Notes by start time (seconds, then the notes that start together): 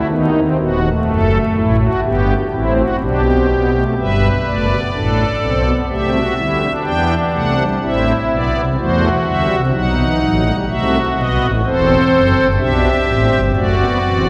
0.09 D#2 D#3 B3 D#4
0.37 C4
0.59 D#1 D#2 B3 F#4
0.84 A3
1.08 F#1 F#2 A4
1.57 A1 A2 E4
1.80 F#4
2.04 G1 G2 B3 G4
2.52 A1 A2 C4 E4
2.76 F#4
3.02 B1 B2 D4 G4
3.26 C4
3.51 B3
3.74 A3
3.98 G1 G2 G3 B4 E5
4.46 F#1 F#2 A3 D5
4.70 B3
4.94 A1 A2 D4 A4
5.42 B1 B2 C4
5.65 B3
5.90 C2 C3 A3 G4 E5
6.13 F#4
6.37 D2 D3 G3 E4
6.60 D4
6.84 E2 E3 B3 G5
7.33 C2 C3 A3 F#5
7.58 G3
7.82 A1 A2 C4 E4 E5
8.31 B1 B2 B3 D5
8.55 C2 C3
8.79 E2 E3 A3 F#4 C5
9.26 D2 D3 G3 E5
9.51 C2 C3
9.73 B1 B2 F#3 D#4 F#5
9.98 E3
10.21 A1 A2 F#3
10.45 G3
10.68 C2 C3 A3 F#4 E5
11.16 B1 B2 B3 D#5
11.40 A1 A2
11.65 E1 E2 C4 A4 C5
12.13 F#1 F#2
12.36 G1 G2
12.58 B1 B2 D4 G4 E5
13.07 A1 A2 C4
13.30 G1 G2
13.54 F#1 F#2 A3 F#4 D5
13.77 B3
14.03 E1 E2 C4
14.26 D4